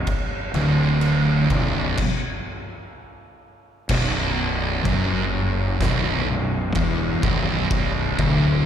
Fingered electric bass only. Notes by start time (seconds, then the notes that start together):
0.54 D1
1.50 B0
3.90 B0
4.85 F#1
5.80 B0
6.26 B0
6.75 E1
7.23 B0
8.18 D1